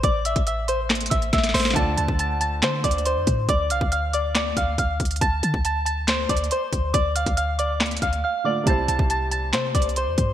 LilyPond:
<<
  \new Staff \with { instrumentName = "Synth bell" } { \time 4/4 \key d \minor \tempo 4 = 139 <d'' d'''>8 <e'' e'''>8 <e'' e'''>8 <c'' c'''>8 r8 <e'' e'''>8 <e'' e'''>8 <c'' c'''>8 | <a'' a'''>8 <a'' a'''>8 <a'' a'''>8 <a'' a'''>8 <c'' c'''>8 <d'' d'''>8 <c'' c'''>4 | <d'' d'''>8 <f'' f'''>8 <f'' f'''>8 <d'' d'''>8 <d'' d'''>8 <f'' f'''>8 <f'' f'''>8 r8 | <a'' a'''>8 <a'' a'''>8 <a'' a'''>8 <a'' a'''>8 <c'' c'''>8 <d'' d'''>8 <c'' c'''>4 |
<d'' d'''>8 <f'' f'''>8 <f'' f'''>8 <d'' d'''>8 r8 <f'' f'''>8 <f'' f'''>8 <d'' d'''>8 | <a'' a'''>8 <a'' a'''>8 <a'' a'''>8 <a'' a'''>8 <c'' c'''>8 <d'' d'''>8 <c'' c'''>4 | }
  \new Staff \with { instrumentName = "Felt piano" } { \time 4/4 \key d \minor r1 | <d a f' d''>1 | r1 | r1 |
r2. r8 <d a f' d''>8 | <c g e' c''>1 | }
  \new Staff \with { instrumentName = "808-style bass" } { \clef bass \time 4/4 \key d \minor a,,8. a,,4.~ a,,16 a,,8 a,,8 a,,8 | d,8 d,16 d,4~ d,16 d8 d,8. f,16 a,8 | d,8 c,16 d,4.~ d,16 d,8 d,8 d,8 | d,8 d16 d,4.~ d,16 d,8 r8 d,8 |
d,8. d,4.~ d,16 d,8 r4 | c,8 c,16 c,4~ c,16 c8 c,8. e,16 g,8 | }
  \new DrumStaff \with { instrumentName = "Drums" } \drummode { \time 4/4 <hh bd>8 hh16 <hh bd>16 hh8 hh8 <hc hh sn>32 hh32 hh32 hh32 <hh bd>16 hh16 <hh bd sn>32 sn32 <hh sn>32 sn32 <hho sn>32 sn32 sn32 sn32 | <hh bd>8 hh16 bd16 hh8 hh8 \tuplet 3/2 { <hc hh sn>16 r16 r16 <hh bd>16 hh16 hh16 } hh8 <hh bd>8 | <hh bd>8 hh16 bd16 hh8 hh8 <hc hh sn>8 <hh bd>8 <hh bd>8 <hh bd>32 hh32 hh32 hh32 | <hh bd>8 hh16 bd16 hh8 hh8 \tuplet 3/2 { <hc hh sn>16 r16 r16 <hh bd>16 hh16 hh16 } hh8 <hh bd>8 |
<hh bd>8 hh16 <hh bd>16 hh8 hh8 <hc hh sn>32 hh32 hh32 hh32 <hh bd>16 hh16 r4 | <hh bd>8 hh16 bd16 hh8 hh8 \tuplet 3/2 { <hc hh sn>16 r16 r16 <hh bd>16 hh16 hh16 } hh8 <hh bd>8 | }
>>